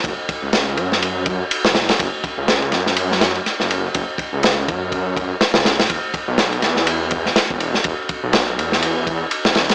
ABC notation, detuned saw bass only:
X:1
M:4/4
L:1/16
Q:"Swing 16ths" 1/4=123
K:Emix
V:1 name="Detuned saw bass" clef=bass
F,,, z2 C,,3 F,,4- F,, z2 F,,,2 z | F,,, z2 C,,3 F,,4- F,, z2 F,,,2 z | F,,, z2 C,,3 F,,4- F,, z2 C,,2 A,,, | E,,, z2 B,,,3 E,,4- E,, z2 E,,,2 z |
E,,, z2 B,,,3 E,,4- E,, z2 E,,,2 z |]